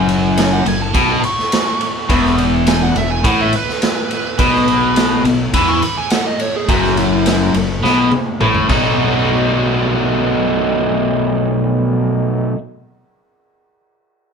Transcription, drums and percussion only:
0.09 ride
0.37 snare, ride
0.66 ride
0.94 kick, ride
1.24 ride
1.39 snare
1.52 snare, ride
1.81 ride
2.10 kick, ride
2.25 snare
2.38 ride
2.67 snare, ride
2.96 ride
3.24 kick, ride
3.53 ride
3.69 snare
3.82 snare, ride
4.11 ride
4.39 kick, ride
4.55 snare
4.68 ride
4.96 snare, ride
5.25 ride
5.54 kick, ride
5.82 ride
6.10 snare, ride
6.40 ride
6.69 kick, ride
6.84 snare
6.97 ride
7.26 snare, ride
7.54 ride
7.84 snare
8.11 high tom
8.41 mid tom
8.55 mid tom
8.69 kick, crash

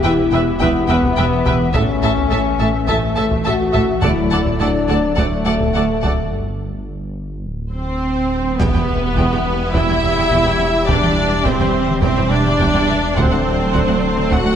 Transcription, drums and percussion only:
0.60 taiko
1.03 taiko
1.46 taiko
1.74 taiko
2.17 taiko
2.88 taiko
3.31 taiko
3.74 taiko
4.02 taiko
4.45 taiko
5.17 taiko
5.60 taiko
6.03 taiko
8.60 taiko
9.17 taiko
9.74 taiko
10.31 taiko
10.89 taiko
11.45 taiko
11.60 taiko mid
11.88 taiko mid
12.03 taiko
12.46 taiko mid
12.60 taiko
13.17 taiko
13.74 taiko
13.89 taiko mid
14.18 taiko mid
14.32 taiko

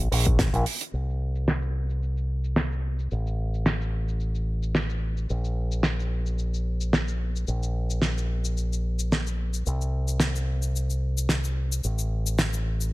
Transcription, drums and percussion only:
0.12 open hi-hat
0.25 kick, closed hi-hat
0.39 kick, snare, closed hi-hat
0.54 closed hi-hat
0.66 open hi-hat
0.81 closed hi-hat
0.94 cabasa
1.10 cabasa
1.35 cabasa
1.48 snare, cabasa
1.62 cabasa
1.90 cabasa
2.03 cabasa
2.17 cabasa
2.44 cabasa
2.56 snare, cabasa
2.72 cabasa
2.99 cabasa
3.11 cabasa
3.27 cabasa
3.54 cabasa
3.66 snare, cabasa
3.82 cabasa
4.08 cabasa
4.20 cabasa
4.35 cabasa
4.63 cabasa
4.75 snare, cabasa
4.90 cabasa
5.17 cabasa
5.30 cabasa
5.45 cabasa
5.72 cabasa
5.83 snare, cabasa
6.00 cabasa
6.26 cabasa
6.38 cabasa
6.54 cabasa
6.81 cabasa
6.93 snare, cabasa
7.08 cabasa
7.36 cabasa
7.48 cabasa
7.63 cabasa
7.90 cabasa
8.02 snare, cabasa
8.18 cabasa
8.45 cabasa
8.57 cabasa
8.73 cabasa
8.99 cabasa
9.12 snare, cabasa
9.27 cabasa
9.54 cabasa
9.66 cabasa
9.81 cabasa
10.08 cabasa
10.20 snare, cabasa
10.36 cabasa
10.62 cabasa
10.76 cabasa
10.90 cabasa
11.18 cabasa
11.29 snare, cabasa
11.44 cabasa
11.72 cabasa
11.84 cabasa
11.99 cabasa
12.26 cabasa
12.38 snare, cabasa
12.53 cabasa
12.81 cabasa

